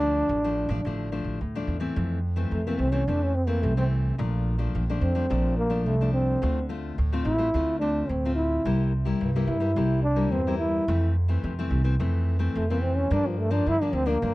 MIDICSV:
0, 0, Header, 1, 4, 480
1, 0, Start_track
1, 0, Key_signature, -1, "major"
1, 0, Tempo, 557103
1, 1690, Time_signature, 4, 2, 24, 8
1, 12357, End_track
2, 0, Start_track
2, 0, Title_t, "Trombone"
2, 0, Program_c, 0, 57
2, 0, Note_on_c, 0, 62, 102
2, 1177, Note_off_c, 0, 62, 0
2, 2174, Note_on_c, 0, 57, 65
2, 2301, Note_on_c, 0, 58, 71
2, 2313, Note_off_c, 0, 57, 0
2, 2410, Note_on_c, 0, 60, 81
2, 2423, Note_off_c, 0, 58, 0
2, 2512, Note_on_c, 0, 61, 75
2, 2524, Note_off_c, 0, 60, 0
2, 2658, Note_on_c, 0, 62, 84
2, 2671, Note_off_c, 0, 61, 0
2, 2785, Note_on_c, 0, 61, 76
2, 2798, Note_off_c, 0, 62, 0
2, 2886, Note_on_c, 0, 60, 83
2, 2899, Note_off_c, 0, 61, 0
2, 2994, Note_on_c, 0, 58, 74
2, 3007, Note_off_c, 0, 60, 0
2, 3125, Note_on_c, 0, 57, 70
2, 3138, Note_off_c, 0, 58, 0
2, 3248, Note_off_c, 0, 57, 0
2, 3253, Note_on_c, 0, 60, 80
2, 3325, Note_off_c, 0, 60, 0
2, 4316, Note_on_c, 0, 60, 76
2, 4770, Note_off_c, 0, 60, 0
2, 4802, Note_on_c, 0, 58, 83
2, 5052, Note_on_c, 0, 57, 76
2, 5064, Note_off_c, 0, 58, 0
2, 5278, Note_off_c, 0, 57, 0
2, 5283, Note_on_c, 0, 60, 82
2, 5734, Note_off_c, 0, 60, 0
2, 6247, Note_on_c, 0, 64, 100
2, 6696, Note_off_c, 0, 64, 0
2, 6717, Note_on_c, 0, 62, 90
2, 6969, Note_on_c, 0, 60, 75
2, 6982, Note_off_c, 0, 62, 0
2, 7191, Note_off_c, 0, 60, 0
2, 7197, Note_on_c, 0, 64, 83
2, 7651, Note_off_c, 0, 64, 0
2, 8160, Note_on_c, 0, 64, 86
2, 8613, Note_off_c, 0, 64, 0
2, 8638, Note_on_c, 0, 62, 91
2, 8887, Note_on_c, 0, 60, 84
2, 8900, Note_off_c, 0, 62, 0
2, 9110, Note_off_c, 0, 60, 0
2, 9115, Note_on_c, 0, 64, 84
2, 9570, Note_off_c, 0, 64, 0
2, 10815, Note_on_c, 0, 57, 74
2, 10944, Note_on_c, 0, 58, 76
2, 10957, Note_off_c, 0, 57, 0
2, 11047, Note_on_c, 0, 60, 86
2, 11060, Note_off_c, 0, 58, 0
2, 11167, Note_on_c, 0, 61, 86
2, 11180, Note_off_c, 0, 60, 0
2, 11307, Note_on_c, 0, 62, 97
2, 11320, Note_off_c, 0, 61, 0
2, 11431, Note_on_c, 0, 53, 70
2, 11444, Note_off_c, 0, 62, 0
2, 11534, Note_on_c, 0, 57, 81
2, 11547, Note_off_c, 0, 53, 0
2, 11649, Note_on_c, 0, 62, 88
2, 11662, Note_off_c, 0, 57, 0
2, 11788, Note_on_c, 0, 64, 104
2, 11801, Note_off_c, 0, 62, 0
2, 11909, Note_on_c, 0, 62, 85
2, 11922, Note_off_c, 0, 64, 0
2, 12012, Note_on_c, 0, 60, 93
2, 12025, Note_off_c, 0, 62, 0
2, 12131, Note_on_c, 0, 58, 85
2, 12144, Note_off_c, 0, 60, 0
2, 12357, Note_off_c, 0, 58, 0
2, 12357, End_track
3, 0, Start_track
3, 0, Title_t, "Nylon-string guitar"
3, 0, Program_c, 1, 24
3, 0, Note_on_c, 1, 50, 56
3, 0, Note_on_c, 1, 53, 52
3, 4, Note_on_c, 1, 57, 53
3, 10, Note_on_c, 1, 62, 60
3, 226, Note_off_c, 1, 50, 0
3, 251, Note_on_c, 1, 45, 50
3, 327, Note_off_c, 1, 53, 0
3, 329, Note_off_c, 1, 57, 0
3, 332, Note_off_c, 1, 62, 0
3, 382, Note_on_c, 1, 53, 59
3, 385, Note_on_c, 1, 57, 57
3, 386, Note_on_c, 1, 62, 66
3, 578, Note_off_c, 1, 53, 0
3, 579, Note_off_c, 1, 57, 0
3, 580, Note_off_c, 1, 62, 0
3, 598, Note_on_c, 1, 53, 59
3, 603, Note_on_c, 1, 57, 61
3, 606, Note_on_c, 1, 62, 67
3, 686, Note_off_c, 1, 53, 0
3, 687, Note_off_c, 1, 57, 0
3, 690, Note_off_c, 1, 62, 0
3, 706, Note_off_c, 1, 45, 0
3, 740, Note_on_c, 1, 50, 50
3, 744, Note_on_c, 1, 53, 49
3, 744, Note_on_c, 1, 57, 51
3, 750, Note_on_c, 1, 62, 61
3, 938, Note_off_c, 1, 53, 0
3, 939, Note_off_c, 1, 57, 0
3, 941, Note_off_c, 1, 62, 0
3, 965, Note_on_c, 1, 53, 51
3, 967, Note_on_c, 1, 57, 53
3, 969, Note_on_c, 1, 62, 63
3, 1191, Note_off_c, 1, 50, 0
3, 1193, Note_off_c, 1, 53, 0
3, 1193, Note_off_c, 1, 57, 0
3, 1195, Note_off_c, 1, 62, 0
3, 1213, Note_on_c, 1, 45, 54
3, 1338, Note_on_c, 1, 53, 57
3, 1341, Note_on_c, 1, 57, 61
3, 1346, Note_on_c, 1, 62, 65
3, 1536, Note_off_c, 1, 53, 0
3, 1538, Note_off_c, 1, 57, 0
3, 1539, Note_off_c, 1, 62, 0
3, 1550, Note_on_c, 1, 52, 62
3, 1556, Note_on_c, 1, 57, 54
3, 1556, Note_on_c, 1, 60, 64
3, 1668, Note_off_c, 1, 45, 0
3, 1689, Note_on_c, 1, 41, 54
3, 1883, Note_off_c, 1, 52, 0
3, 1884, Note_off_c, 1, 57, 0
3, 1885, Note_off_c, 1, 60, 0
3, 2034, Note_on_c, 1, 52, 54
3, 2039, Note_on_c, 1, 57, 55
3, 2043, Note_on_c, 1, 60, 64
3, 2146, Note_off_c, 1, 41, 0
3, 2171, Note_on_c, 1, 48, 47
3, 2244, Note_off_c, 1, 52, 0
3, 2245, Note_off_c, 1, 57, 0
3, 2248, Note_off_c, 1, 60, 0
3, 2299, Note_on_c, 1, 52, 58
3, 2304, Note_on_c, 1, 57, 58
3, 2306, Note_on_c, 1, 60, 66
3, 2496, Note_off_c, 1, 52, 0
3, 2499, Note_off_c, 1, 57, 0
3, 2500, Note_off_c, 1, 60, 0
3, 2515, Note_on_c, 1, 52, 62
3, 2519, Note_on_c, 1, 60, 66
3, 2520, Note_on_c, 1, 57, 59
3, 2605, Note_off_c, 1, 52, 0
3, 2606, Note_off_c, 1, 57, 0
3, 2607, Note_off_c, 1, 60, 0
3, 2627, Note_off_c, 1, 48, 0
3, 2650, Note_on_c, 1, 41, 52
3, 2654, Note_on_c, 1, 52, 48
3, 2657, Note_on_c, 1, 57, 52
3, 2660, Note_on_c, 1, 60, 55
3, 2877, Note_off_c, 1, 52, 0
3, 2879, Note_off_c, 1, 57, 0
3, 2880, Note_off_c, 1, 60, 0
3, 2989, Note_on_c, 1, 52, 58
3, 2993, Note_on_c, 1, 57, 56
3, 2994, Note_on_c, 1, 60, 64
3, 3106, Note_off_c, 1, 41, 0
3, 3123, Note_on_c, 1, 48, 54
3, 3202, Note_off_c, 1, 52, 0
3, 3203, Note_off_c, 1, 57, 0
3, 3204, Note_off_c, 1, 60, 0
3, 3249, Note_on_c, 1, 52, 58
3, 3253, Note_on_c, 1, 57, 54
3, 3256, Note_on_c, 1, 60, 65
3, 3572, Note_off_c, 1, 52, 0
3, 3574, Note_off_c, 1, 57, 0
3, 3575, Note_off_c, 1, 60, 0
3, 3583, Note_off_c, 1, 48, 0
3, 3603, Note_on_c, 1, 46, 59
3, 3605, Note_on_c, 1, 53, 58
3, 3607, Note_on_c, 1, 57, 54
3, 3612, Note_on_c, 1, 62, 60
3, 3929, Note_off_c, 1, 53, 0
3, 3932, Note_off_c, 1, 57, 0
3, 3932, Note_off_c, 1, 62, 0
3, 3950, Note_on_c, 1, 53, 58
3, 3953, Note_on_c, 1, 57, 57
3, 3955, Note_on_c, 1, 62, 58
3, 4064, Note_off_c, 1, 46, 0
3, 4092, Note_on_c, 1, 41, 54
3, 4162, Note_off_c, 1, 53, 0
3, 4163, Note_off_c, 1, 57, 0
3, 4165, Note_off_c, 1, 62, 0
3, 4218, Note_on_c, 1, 53, 63
3, 4221, Note_on_c, 1, 57, 60
3, 4225, Note_on_c, 1, 62, 64
3, 4417, Note_off_c, 1, 53, 0
3, 4418, Note_off_c, 1, 57, 0
3, 4420, Note_off_c, 1, 62, 0
3, 4436, Note_on_c, 1, 53, 65
3, 4440, Note_on_c, 1, 57, 56
3, 4444, Note_on_c, 1, 62, 62
3, 4526, Note_off_c, 1, 53, 0
3, 4528, Note_off_c, 1, 57, 0
3, 4528, Note_off_c, 1, 62, 0
3, 4548, Note_off_c, 1, 41, 0
3, 4563, Note_on_c, 1, 46, 53
3, 4567, Note_on_c, 1, 53, 52
3, 4568, Note_on_c, 1, 57, 50
3, 4572, Note_on_c, 1, 62, 57
3, 4890, Note_off_c, 1, 53, 0
3, 4891, Note_off_c, 1, 57, 0
3, 4893, Note_off_c, 1, 62, 0
3, 4908, Note_on_c, 1, 53, 59
3, 4909, Note_on_c, 1, 57, 56
3, 4915, Note_on_c, 1, 62, 62
3, 5024, Note_off_c, 1, 46, 0
3, 5051, Note_on_c, 1, 41, 55
3, 5121, Note_off_c, 1, 53, 0
3, 5123, Note_off_c, 1, 57, 0
3, 5124, Note_off_c, 1, 62, 0
3, 5176, Note_on_c, 1, 53, 56
3, 5180, Note_on_c, 1, 57, 55
3, 5185, Note_on_c, 1, 62, 60
3, 5496, Note_off_c, 1, 53, 0
3, 5498, Note_off_c, 1, 57, 0
3, 5500, Note_off_c, 1, 62, 0
3, 5508, Note_off_c, 1, 41, 0
3, 5528, Note_on_c, 1, 50, 58
3, 5531, Note_on_c, 1, 57, 55
3, 5534, Note_on_c, 1, 60, 55
3, 5538, Note_on_c, 1, 65, 65
3, 5671, Note_off_c, 1, 57, 0
3, 5674, Note_off_c, 1, 60, 0
3, 5676, Note_off_c, 1, 65, 0
3, 5766, Note_on_c, 1, 57, 49
3, 5771, Note_on_c, 1, 60, 53
3, 5771, Note_on_c, 1, 65, 60
3, 5987, Note_off_c, 1, 50, 0
3, 5995, Note_off_c, 1, 57, 0
3, 5996, Note_off_c, 1, 60, 0
3, 5997, Note_off_c, 1, 65, 0
3, 6013, Note_on_c, 1, 45, 50
3, 6139, Note_on_c, 1, 57, 59
3, 6145, Note_on_c, 1, 60, 64
3, 6147, Note_on_c, 1, 65, 65
3, 6338, Note_off_c, 1, 57, 0
3, 6339, Note_off_c, 1, 60, 0
3, 6341, Note_off_c, 1, 65, 0
3, 6360, Note_on_c, 1, 57, 57
3, 6364, Note_on_c, 1, 60, 59
3, 6369, Note_on_c, 1, 65, 65
3, 6448, Note_off_c, 1, 57, 0
3, 6450, Note_off_c, 1, 60, 0
3, 6452, Note_off_c, 1, 65, 0
3, 6469, Note_off_c, 1, 45, 0
3, 6499, Note_on_c, 1, 50, 52
3, 6505, Note_on_c, 1, 57, 55
3, 6506, Note_on_c, 1, 60, 47
3, 6510, Note_on_c, 1, 65, 56
3, 6699, Note_off_c, 1, 57, 0
3, 6701, Note_off_c, 1, 60, 0
3, 6703, Note_off_c, 1, 65, 0
3, 6731, Note_on_c, 1, 57, 54
3, 6734, Note_on_c, 1, 60, 55
3, 6737, Note_on_c, 1, 65, 58
3, 6953, Note_off_c, 1, 50, 0
3, 6957, Note_off_c, 1, 57, 0
3, 6958, Note_off_c, 1, 60, 0
3, 6960, Note_off_c, 1, 65, 0
3, 6983, Note_on_c, 1, 45, 56
3, 7110, Note_on_c, 1, 57, 63
3, 7115, Note_on_c, 1, 60, 56
3, 7118, Note_on_c, 1, 65, 60
3, 7423, Note_off_c, 1, 57, 0
3, 7426, Note_off_c, 1, 60, 0
3, 7426, Note_off_c, 1, 65, 0
3, 7434, Note_off_c, 1, 45, 0
3, 7455, Note_on_c, 1, 48, 55
3, 7458, Note_on_c, 1, 55, 61
3, 7464, Note_on_c, 1, 58, 59
3, 7465, Note_on_c, 1, 64, 62
3, 7680, Note_off_c, 1, 55, 0
3, 7682, Note_off_c, 1, 58, 0
3, 7684, Note_off_c, 1, 64, 0
3, 7799, Note_on_c, 1, 55, 61
3, 7802, Note_on_c, 1, 58, 53
3, 7808, Note_on_c, 1, 64, 72
3, 7911, Note_off_c, 1, 48, 0
3, 7936, Note_on_c, 1, 43, 50
3, 8008, Note_off_c, 1, 55, 0
3, 8010, Note_off_c, 1, 58, 0
3, 8011, Note_off_c, 1, 64, 0
3, 8060, Note_on_c, 1, 55, 57
3, 8065, Note_on_c, 1, 58, 60
3, 8067, Note_on_c, 1, 64, 67
3, 8258, Note_off_c, 1, 55, 0
3, 8261, Note_off_c, 1, 58, 0
3, 8261, Note_off_c, 1, 64, 0
3, 8271, Note_on_c, 1, 55, 53
3, 8274, Note_on_c, 1, 58, 60
3, 8282, Note_on_c, 1, 64, 60
3, 8364, Note_off_c, 1, 55, 0
3, 8366, Note_off_c, 1, 58, 0
3, 8368, Note_off_c, 1, 64, 0
3, 8391, Note_off_c, 1, 43, 0
3, 8414, Note_on_c, 1, 48, 53
3, 8419, Note_on_c, 1, 55, 52
3, 8423, Note_on_c, 1, 58, 51
3, 8423, Note_on_c, 1, 64, 54
3, 8640, Note_off_c, 1, 55, 0
3, 8641, Note_off_c, 1, 58, 0
3, 8643, Note_off_c, 1, 64, 0
3, 8753, Note_on_c, 1, 55, 57
3, 8757, Note_on_c, 1, 58, 62
3, 8761, Note_on_c, 1, 64, 61
3, 8871, Note_off_c, 1, 48, 0
3, 8889, Note_on_c, 1, 43, 53
3, 8965, Note_off_c, 1, 55, 0
3, 8967, Note_off_c, 1, 58, 0
3, 8968, Note_off_c, 1, 64, 0
3, 9021, Note_on_c, 1, 55, 58
3, 9029, Note_on_c, 1, 58, 56
3, 9029, Note_on_c, 1, 64, 69
3, 9340, Note_off_c, 1, 55, 0
3, 9342, Note_off_c, 1, 58, 0
3, 9343, Note_off_c, 1, 64, 0
3, 9347, Note_off_c, 1, 43, 0
3, 9378, Note_on_c, 1, 41, 58
3, 9378, Note_on_c, 1, 52, 52
3, 9381, Note_on_c, 1, 57, 53
3, 9386, Note_on_c, 1, 60, 61
3, 9601, Note_off_c, 1, 52, 0
3, 9603, Note_off_c, 1, 57, 0
3, 9604, Note_off_c, 1, 60, 0
3, 9722, Note_on_c, 1, 52, 58
3, 9726, Note_on_c, 1, 57, 58
3, 9732, Note_on_c, 1, 60, 62
3, 9832, Note_off_c, 1, 41, 0
3, 9858, Note_on_c, 1, 48, 51
3, 9930, Note_off_c, 1, 52, 0
3, 9931, Note_off_c, 1, 57, 0
3, 9934, Note_off_c, 1, 60, 0
3, 9983, Note_on_c, 1, 52, 60
3, 9987, Note_on_c, 1, 57, 60
3, 9992, Note_on_c, 1, 60, 64
3, 10180, Note_off_c, 1, 52, 0
3, 10182, Note_off_c, 1, 57, 0
3, 10184, Note_off_c, 1, 60, 0
3, 10201, Note_on_c, 1, 52, 55
3, 10204, Note_on_c, 1, 57, 54
3, 10206, Note_on_c, 1, 60, 71
3, 10289, Note_off_c, 1, 52, 0
3, 10290, Note_off_c, 1, 57, 0
3, 10292, Note_off_c, 1, 60, 0
3, 10312, Note_off_c, 1, 48, 0
3, 10334, Note_on_c, 1, 41, 51
3, 10339, Note_on_c, 1, 52, 53
3, 10342, Note_on_c, 1, 57, 56
3, 10345, Note_on_c, 1, 60, 60
3, 10657, Note_off_c, 1, 52, 0
3, 10660, Note_off_c, 1, 57, 0
3, 10661, Note_off_c, 1, 60, 0
3, 10676, Note_on_c, 1, 52, 60
3, 10678, Note_on_c, 1, 57, 58
3, 10682, Note_on_c, 1, 60, 70
3, 10791, Note_off_c, 1, 41, 0
3, 10816, Note_on_c, 1, 48, 57
3, 10887, Note_off_c, 1, 52, 0
3, 10887, Note_off_c, 1, 57, 0
3, 10890, Note_off_c, 1, 60, 0
3, 10945, Note_on_c, 1, 52, 61
3, 10947, Note_on_c, 1, 57, 61
3, 10952, Note_on_c, 1, 60, 63
3, 11261, Note_off_c, 1, 52, 0
3, 11263, Note_off_c, 1, 57, 0
3, 11264, Note_off_c, 1, 60, 0
3, 11271, Note_off_c, 1, 48, 0
3, 11289, Note_on_c, 1, 43, 58
3, 11291, Note_on_c, 1, 53, 61
3, 11295, Note_on_c, 1, 58, 59
3, 11299, Note_on_c, 1, 62, 57
3, 11614, Note_off_c, 1, 53, 0
3, 11617, Note_off_c, 1, 58, 0
3, 11619, Note_off_c, 1, 62, 0
3, 11637, Note_on_c, 1, 53, 63
3, 11639, Note_on_c, 1, 58, 59
3, 11643, Note_on_c, 1, 62, 65
3, 11749, Note_off_c, 1, 43, 0
3, 11777, Note_on_c, 1, 50, 55
3, 11848, Note_off_c, 1, 53, 0
3, 11848, Note_off_c, 1, 58, 0
3, 11851, Note_off_c, 1, 62, 0
3, 11902, Note_on_c, 1, 53, 58
3, 11908, Note_on_c, 1, 58, 57
3, 11913, Note_on_c, 1, 62, 67
3, 12100, Note_off_c, 1, 53, 0
3, 12103, Note_off_c, 1, 58, 0
3, 12105, Note_off_c, 1, 62, 0
3, 12111, Note_on_c, 1, 53, 64
3, 12116, Note_on_c, 1, 58, 64
3, 12120, Note_on_c, 1, 62, 68
3, 12205, Note_off_c, 1, 53, 0
3, 12207, Note_off_c, 1, 58, 0
3, 12209, Note_off_c, 1, 62, 0
3, 12232, Note_off_c, 1, 50, 0
3, 12254, Note_on_c, 1, 43, 53
3, 12254, Note_on_c, 1, 53, 51
3, 12256, Note_on_c, 1, 58, 53
3, 12261, Note_on_c, 1, 62, 64
3, 12357, Note_off_c, 1, 43, 0
3, 12357, Note_off_c, 1, 53, 0
3, 12357, Note_off_c, 1, 58, 0
3, 12357, Note_off_c, 1, 62, 0
3, 12357, End_track
4, 0, Start_track
4, 0, Title_t, "Upright bass"
4, 0, Program_c, 2, 32
4, 0, Note_on_c, 2, 38, 93
4, 178, Note_off_c, 2, 38, 0
4, 251, Note_on_c, 2, 33, 92
4, 557, Note_off_c, 2, 33, 0
4, 592, Note_on_c, 2, 33, 93
4, 702, Note_off_c, 2, 33, 0
4, 729, Note_on_c, 2, 33, 86
4, 1036, Note_off_c, 2, 33, 0
4, 1072, Note_on_c, 2, 33, 73
4, 1182, Note_off_c, 2, 33, 0
4, 1214, Note_on_c, 2, 38, 76
4, 1429, Note_off_c, 2, 38, 0
4, 1443, Note_on_c, 2, 40, 77
4, 1662, Note_off_c, 2, 40, 0
4, 1692, Note_on_c, 2, 41, 98
4, 2099, Note_off_c, 2, 41, 0
4, 2166, Note_on_c, 2, 41, 82
4, 2372, Note_off_c, 2, 41, 0
4, 2401, Note_on_c, 2, 36, 83
4, 2609, Note_off_c, 2, 36, 0
4, 2650, Note_on_c, 2, 41, 88
4, 3130, Note_on_c, 2, 36, 88
4, 3143, Note_off_c, 2, 41, 0
4, 3538, Note_off_c, 2, 36, 0
4, 3610, Note_on_c, 2, 34, 96
4, 4018, Note_off_c, 2, 34, 0
4, 4091, Note_on_c, 2, 34, 88
4, 4295, Note_off_c, 2, 34, 0
4, 4320, Note_on_c, 2, 41, 85
4, 4529, Note_off_c, 2, 41, 0
4, 4571, Note_on_c, 2, 34, 98
4, 5055, Note_off_c, 2, 34, 0
4, 5055, Note_on_c, 2, 36, 91
4, 5462, Note_off_c, 2, 36, 0
4, 5537, Note_on_c, 2, 38, 100
4, 5943, Note_off_c, 2, 38, 0
4, 6016, Note_on_c, 2, 38, 89
4, 6219, Note_off_c, 2, 38, 0
4, 6245, Note_on_c, 2, 33, 93
4, 6452, Note_off_c, 2, 33, 0
4, 6497, Note_on_c, 2, 38, 102
4, 6903, Note_off_c, 2, 38, 0
4, 6972, Note_on_c, 2, 38, 89
4, 7381, Note_off_c, 2, 38, 0
4, 7456, Note_on_c, 2, 36, 100
4, 7863, Note_off_c, 2, 36, 0
4, 7934, Note_on_c, 2, 36, 85
4, 8137, Note_off_c, 2, 36, 0
4, 8163, Note_on_c, 2, 43, 86
4, 8371, Note_off_c, 2, 43, 0
4, 8411, Note_on_c, 2, 36, 91
4, 8892, Note_off_c, 2, 36, 0
4, 8892, Note_on_c, 2, 40, 95
4, 9301, Note_off_c, 2, 40, 0
4, 9375, Note_on_c, 2, 41, 102
4, 9783, Note_off_c, 2, 41, 0
4, 9853, Note_on_c, 2, 41, 88
4, 10058, Note_off_c, 2, 41, 0
4, 10086, Note_on_c, 2, 36, 89
4, 10293, Note_off_c, 2, 36, 0
4, 10336, Note_on_c, 2, 41, 97
4, 10743, Note_off_c, 2, 41, 0
4, 10818, Note_on_c, 2, 41, 89
4, 11225, Note_off_c, 2, 41, 0
4, 11295, Note_on_c, 2, 43, 103
4, 11703, Note_off_c, 2, 43, 0
4, 11773, Note_on_c, 2, 43, 86
4, 11978, Note_off_c, 2, 43, 0
4, 12001, Note_on_c, 2, 38, 90
4, 12211, Note_off_c, 2, 38, 0
4, 12253, Note_on_c, 2, 43, 95
4, 12357, Note_off_c, 2, 43, 0
4, 12357, End_track
0, 0, End_of_file